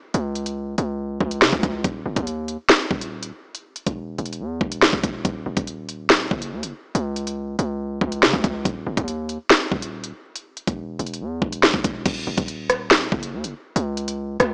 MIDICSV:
0, 0, Header, 1, 3, 480
1, 0, Start_track
1, 0, Tempo, 425532
1, 160, Time_signature, 4, 2, 24, 8
1, 16398, End_track
2, 0, Start_track
2, 0, Title_t, "808-style bass"
2, 0, Program_c, 0, 38
2, 161, Note_on_c, 0, 37, 118
2, 852, Note_off_c, 0, 37, 0
2, 881, Note_on_c, 0, 37, 100
2, 1341, Note_off_c, 0, 37, 0
2, 1359, Note_on_c, 0, 37, 106
2, 1601, Note_on_c, 0, 49, 97
2, 1618, Note_off_c, 0, 37, 0
2, 1715, Note_off_c, 0, 49, 0
2, 1720, Note_on_c, 0, 37, 100
2, 1835, Note_off_c, 0, 37, 0
2, 1840, Note_on_c, 0, 37, 106
2, 2071, Note_off_c, 0, 37, 0
2, 2080, Note_on_c, 0, 27, 114
2, 2311, Note_off_c, 0, 27, 0
2, 2320, Note_on_c, 0, 30, 106
2, 2435, Note_off_c, 0, 30, 0
2, 2440, Note_on_c, 0, 39, 98
2, 2901, Note_off_c, 0, 39, 0
2, 3279, Note_on_c, 0, 27, 102
2, 3740, Note_off_c, 0, 27, 0
2, 4360, Note_on_c, 0, 28, 98
2, 4706, Note_off_c, 0, 28, 0
2, 4720, Note_on_c, 0, 28, 105
2, 4960, Note_on_c, 0, 40, 98
2, 4977, Note_off_c, 0, 28, 0
2, 5188, Note_off_c, 0, 40, 0
2, 5199, Note_on_c, 0, 28, 104
2, 5545, Note_off_c, 0, 28, 0
2, 5560, Note_on_c, 0, 28, 100
2, 5673, Note_off_c, 0, 28, 0
2, 5680, Note_on_c, 0, 28, 102
2, 5910, Note_off_c, 0, 28, 0
2, 5920, Note_on_c, 0, 27, 114
2, 6151, Note_off_c, 0, 27, 0
2, 6160, Note_on_c, 0, 27, 103
2, 6275, Note_off_c, 0, 27, 0
2, 6280, Note_on_c, 0, 27, 100
2, 7087, Note_off_c, 0, 27, 0
2, 7119, Note_on_c, 0, 30, 109
2, 7360, Note_on_c, 0, 39, 96
2, 7377, Note_off_c, 0, 30, 0
2, 7479, Note_on_c, 0, 30, 98
2, 7496, Note_off_c, 0, 39, 0
2, 7594, Note_off_c, 0, 30, 0
2, 7838, Note_on_c, 0, 37, 117
2, 8531, Note_off_c, 0, 37, 0
2, 8559, Note_on_c, 0, 37, 102
2, 9021, Note_off_c, 0, 37, 0
2, 9039, Note_on_c, 0, 37, 105
2, 9280, Note_on_c, 0, 49, 97
2, 9297, Note_off_c, 0, 37, 0
2, 9394, Note_off_c, 0, 49, 0
2, 9400, Note_on_c, 0, 37, 98
2, 9516, Note_off_c, 0, 37, 0
2, 9521, Note_on_c, 0, 37, 103
2, 9751, Note_off_c, 0, 37, 0
2, 9760, Note_on_c, 0, 27, 116
2, 9991, Note_off_c, 0, 27, 0
2, 10000, Note_on_c, 0, 30, 104
2, 10116, Note_off_c, 0, 30, 0
2, 10121, Note_on_c, 0, 39, 98
2, 10581, Note_off_c, 0, 39, 0
2, 10959, Note_on_c, 0, 27, 99
2, 11421, Note_off_c, 0, 27, 0
2, 12041, Note_on_c, 0, 28, 102
2, 12386, Note_off_c, 0, 28, 0
2, 12400, Note_on_c, 0, 28, 103
2, 12639, Note_on_c, 0, 40, 96
2, 12656, Note_off_c, 0, 28, 0
2, 12868, Note_off_c, 0, 40, 0
2, 12879, Note_on_c, 0, 28, 100
2, 13225, Note_off_c, 0, 28, 0
2, 13240, Note_on_c, 0, 28, 98
2, 13355, Note_off_c, 0, 28, 0
2, 13360, Note_on_c, 0, 28, 104
2, 13591, Note_off_c, 0, 28, 0
2, 13600, Note_on_c, 0, 27, 116
2, 13831, Note_off_c, 0, 27, 0
2, 13840, Note_on_c, 0, 27, 108
2, 13956, Note_off_c, 0, 27, 0
2, 13960, Note_on_c, 0, 27, 103
2, 14767, Note_off_c, 0, 27, 0
2, 14799, Note_on_c, 0, 30, 107
2, 15041, Note_on_c, 0, 39, 98
2, 15057, Note_off_c, 0, 30, 0
2, 15160, Note_on_c, 0, 30, 102
2, 15177, Note_off_c, 0, 39, 0
2, 15274, Note_off_c, 0, 30, 0
2, 15520, Note_on_c, 0, 37, 114
2, 16212, Note_off_c, 0, 37, 0
2, 16241, Note_on_c, 0, 37, 105
2, 16398, Note_off_c, 0, 37, 0
2, 16398, End_track
3, 0, Start_track
3, 0, Title_t, "Drums"
3, 159, Note_on_c, 9, 42, 77
3, 272, Note_off_c, 9, 42, 0
3, 399, Note_on_c, 9, 42, 67
3, 512, Note_off_c, 9, 42, 0
3, 520, Note_on_c, 9, 42, 80
3, 632, Note_off_c, 9, 42, 0
3, 880, Note_on_c, 9, 42, 64
3, 993, Note_off_c, 9, 42, 0
3, 1359, Note_on_c, 9, 36, 89
3, 1472, Note_off_c, 9, 36, 0
3, 1480, Note_on_c, 9, 42, 81
3, 1593, Note_off_c, 9, 42, 0
3, 1600, Note_on_c, 9, 38, 122
3, 1713, Note_off_c, 9, 38, 0
3, 1720, Note_on_c, 9, 36, 88
3, 1833, Note_off_c, 9, 36, 0
3, 1840, Note_on_c, 9, 36, 98
3, 1840, Note_on_c, 9, 42, 85
3, 1953, Note_off_c, 9, 36, 0
3, 1953, Note_off_c, 9, 42, 0
3, 2079, Note_on_c, 9, 42, 75
3, 2080, Note_on_c, 9, 36, 106
3, 2192, Note_off_c, 9, 42, 0
3, 2193, Note_off_c, 9, 36, 0
3, 2440, Note_on_c, 9, 36, 98
3, 2440, Note_on_c, 9, 42, 80
3, 2553, Note_off_c, 9, 36, 0
3, 2553, Note_off_c, 9, 42, 0
3, 2560, Note_on_c, 9, 42, 76
3, 2673, Note_off_c, 9, 42, 0
3, 2800, Note_on_c, 9, 42, 71
3, 2913, Note_off_c, 9, 42, 0
3, 3039, Note_on_c, 9, 38, 120
3, 3152, Note_off_c, 9, 38, 0
3, 3279, Note_on_c, 9, 36, 89
3, 3392, Note_off_c, 9, 36, 0
3, 3400, Note_on_c, 9, 42, 75
3, 3513, Note_off_c, 9, 42, 0
3, 3639, Note_on_c, 9, 42, 87
3, 3752, Note_off_c, 9, 42, 0
3, 4001, Note_on_c, 9, 42, 77
3, 4113, Note_off_c, 9, 42, 0
3, 4240, Note_on_c, 9, 42, 65
3, 4352, Note_off_c, 9, 42, 0
3, 4360, Note_on_c, 9, 42, 83
3, 4361, Note_on_c, 9, 36, 100
3, 4473, Note_off_c, 9, 36, 0
3, 4473, Note_off_c, 9, 42, 0
3, 4720, Note_on_c, 9, 42, 55
3, 4800, Note_off_c, 9, 42, 0
3, 4800, Note_on_c, 9, 42, 57
3, 4880, Note_off_c, 9, 42, 0
3, 4880, Note_on_c, 9, 42, 56
3, 4993, Note_off_c, 9, 42, 0
3, 5199, Note_on_c, 9, 36, 90
3, 5312, Note_off_c, 9, 36, 0
3, 5320, Note_on_c, 9, 42, 80
3, 5433, Note_off_c, 9, 42, 0
3, 5441, Note_on_c, 9, 38, 120
3, 5553, Note_off_c, 9, 38, 0
3, 5560, Note_on_c, 9, 36, 91
3, 5673, Note_off_c, 9, 36, 0
3, 5680, Note_on_c, 9, 36, 96
3, 5680, Note_on_c, 9, 42, 86
3, 5793, Note_off_c, 9, 36, 0
3, 5793, Note_off_c, 9, 42, 0
3, 5920, Note_on_c, 9, 36, 103
3, 5920, Note_on_c, 9, 42, 75
3, 6033, Note_off_c, 9, 36, 0
3, 6033, Note_off_c, 9, 42, 0
3, 6280, Note_on_c, 9, 36, 98
3, 6280, Note_on_c, 9, 42, 85
3, 6393, Note_off_c, 9, 36, 0
3, 6393, Note_off_c, 9, 42, 0
3, 6400, Note_on_c, 9, 42, 77
3, 6513, Note_off_c, 9, 42, 0
3, 6640, Note_on_c, 9, 42, 73
3, 6753, Note_off_c, 9, 42, 0
3, 6880, Note_on_c, 9, 38, 123
3, 6992, Note_off_c, 9, 38, 0
3, 7119, Note_on_c, 9, 36, 92
3, 7231, Note_off_c, 9, 36, 0
3, 7240, Note_on_c, 9, 42, 75
3, 7352, Note_off_c, 9, 42, 0
3, 7480, Note_on_c, 9, 42, 84
3, 7593, Note_off_c, 9, 42, 0
3, 7839, Note_on_c, 9, 42, 77
3, 7952, Note_off_c, 9, 42, 0
3, 8080, Note_on_c, 9, 42, 66
3, 8192, Note_off_c, 9, 42, 0
3, 8201, Note_on_c, 9, 42, 86
3, 8313, Note_off_c, 9, 42, 0
3, 8560, Note_on_c, 9, 42, 66
3, 8673, Note_off_c, 9, 42, 0
3, 9039, Note_on_c, 9, 36, 92
3, 9152, Note_off_c, 9, 36, 0
3, 9160, Note_on_c, 9, 42, 82
3, 9272, Note_off_c, 9, 42, 0
3, 9282, Note_on_c, 9, 38, 122
3, 9395, Note_off_c, 9, 38, 0
3, 9400, Note_on_c, 9, 36, 89
3, 9513, Note_off_c, 9, 36, 0
3, 9520, Note_on_c, 9, 36, 99
3, 9521, Note_on_c, 9, 42, 86
3, 9633, Note_off_c, 9, 36, 0
3, 9634, Note_off_c, 9, 42, 0
3, 9760, Note_on_c, 9, 36, 106
3, 9761, Note_on_c, 9, 42, 80
3, 9873, Note_off_c, 9, 36, 0
3, 9874, Note_off_c, 9, 42, 0
3, 10121, Note_on_c, 9, 36, 100
3, 10121, Note_on_c, 9, 42, 82
3, 10233, Note_off_c, 9, 36, 0
3, 10234, Note_off_c, 9, 42, 0
3, 10241, Note_on_c, 9, 42, 79
3, 10354, Note_off_c, 9, 42, 0
3, 10481, Note_on_c, 9, 42, 72
3, 10593, Note_off_c, 9, 42, 0
3, 10720, Note_on_c, 9, 38, 122
3, 10832, Note_off_c, 9, 38, 0
3, 10959, Note_on_c, 9, 36, 91
3, 11072, Note_off_c, 9, 36, 0
3, 11081, Note_on_c, 9, 42, 75
3, 11194, Note_off_c, 9, 42, 0
3, 11321, Note_on_c, 9, 42, 84
3, 11434, Note_off_c, 9, 42, 0
3, 11681, Note_on_c, 9, 42, 78
3, 11794, Note_off_c, 9, 42, 0
3, 11921, Note_on_c, 9, 42, 68
3, 12034, Note_off_c, 9, 42, 0
3, 12041, Note_on_c, 9, 36, 99
3, 12041, Note_on_c, 9, 42, 82
3, 12154, Note_off_c, 9, 36, 0
3, 12154, Note_off_c, 9, 42, 0
3, 12402, Note_on_c, 9, 42, 58
3, 12482, Note_off_c, 9, 42, 0
3, 12482, Note_on_c, 9, 42, 55
3, 12561, Note_off_c, 9, 42, 0
3, 12561, Note_on_c, 9, 42, 57
3, 12674, Note_off_c, 9, 42, 0
3, 12879, Note_on_c, 9, 36, 94
3, 12992, Note_off_c, 9, 36, 0
3, 13000, Note_on_c, 9, 42, 82
3, 13113, Note_off_c, 9, 42, 0
3, 13121, Note_on_c, 9, 38, 122
3, 13234, Note_off_c, 9, 38, 0
3, 13240, Note_on_c, 9, 36, 88
3, 13353, Note_off_c, 9, 36, 0
3, 13359, Note_on_c, 9, 42, 84
3, 13360, Note_on_c, 9, 36, 97
3, 13472, Note_off_c, 9, 42, 0
3, 13473, Note_off_c, 9, 36, 0
3, 13599, Note_on_c, 9, 42, 78
3, 13599, Note_on_c, 9, 49, 105
3, 13600, Note_on_c, 9, 36, 107
3, 13712, Note_off_c, 9, 42, 0
3, 13712, Note_off_c, 9, 49, 0
3, 13713, Note_off_c, 9, 36, 0
3, 13959, Note_on_c, 9, 42, 84
3, 13960, Note_on_c, 9, 36, 104
3, 14072, Note_off_c, 9, 42, 0
3, 14073, Note_off_c, 9, 36, 0
3, 14080, Note_on_c, 9, 42, 80
3, 14193, Note_off_c, 9, 42, 0
3, 14321, Note_on_c, 9, 42, 74
3, 14322, Note_on_c, 9, 37, 85
3, 14434, Note_off_c, 9, 37, 0
3, 14434, Note_off_c, 9, 42, 0
3, 14561, Note_on_c, 9, 38, 120
3, 14674, Note_off_c, 9, 38, 0
3, 14800, Note_on_c, 9, 36, 96
3, 14912, Note_off_c, 9, 36, 0
3, 14921, Note_on_c, 9, 42, 79
3, 15034, Note_off_c, 9, 42, 0
3, 15161, Note_on_c, 9, 42, 84
3, 15274, Note_off_c, 9, 42, 0
3, 15521, Note_on_c, 9, 42, 83
3, 15634, Note_off_c, 9, 42, 0
3, 15761, Note_on_c, 9, 42, 71
3, 15873, Note_off_c, 9, 42, 0
3, 15881, Note_on_c, 9, 42, 86
3, 15994, Note_off_c, 9, 42, 0
3, 16242, Note_on_c, 9, 42, 67
3, 16243, Note_on_c, 9, 37, 87
3, 16355, Note_off_c, 9, 42, 0
3, 16356, Note_off_c, 9, 37, 0
3, 16398, End_track
0, 0, End_of_file